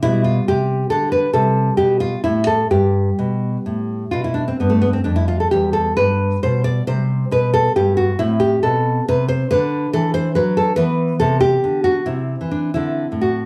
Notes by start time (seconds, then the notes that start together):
0.03 B2 G3 E4
0.24 F4
0.48 C3 G4
0.90 D3 A4
1.12 B4
1.33 C3 G3 A4
1.77 B2 G4
2.00 F4
2.24 A2 E4
2.47 A4
2.71 G2 G3 G4
3.19 B2
3.66 A2
4.11 B2 F4
4.24 E4
4.34 D4
4.48 C4
4.60 G2 B3
4.70 A3
4.82 B3
4.93 C4
5.04 F2 D4
5.16 E4
5.28 F4
5.40 A4
5.51 E2 G3 G4
5.73 A4
5.97 G2 B4
6.43 B2 C5
6.64 D5
6.87 C3 G3 C5
7.31 B2 B4
7.54 A4
7.76 G2 G4
7.97 F#4
8.19 A2 C4 E4
8.40 G4
8.63 B2 A4
9.08 C3 B4
9.28 C5
9.51 D3 D4 B4
9.93 E3 A4
10.14 C5
10.35 F#3 B4
10.57 A4
10.76 E3 B3 B4
11.20 C3 A4
11.41 G4
11.64 D3
11.84 F#4
12.06 C3 C4 E4
12.41 E3
12.51 D4
12.74 D3 C4 E4
13.12 A2
13.21 F#4